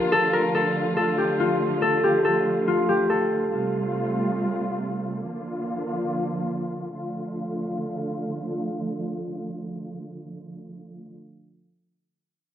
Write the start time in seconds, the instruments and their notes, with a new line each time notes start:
Already playing: string section D3 F3 A#3 F4, harp F4 G4 A#4
0.12 string section A3, harp A4
0.33 harp A#4
0.55 harp A4
0.97 harp A4
1.18 harp G4
1.40 harp F4
1.82 harp A4
2.04 harp G4
2.25 harp A4
2.68 harp F4
2.89 harp G4
3.10 harp A4
3.52 string section C3 G3 A3 F4
5.23 string section D3 F3 A#3 F4
6.93 string section D3 F3 A3 F4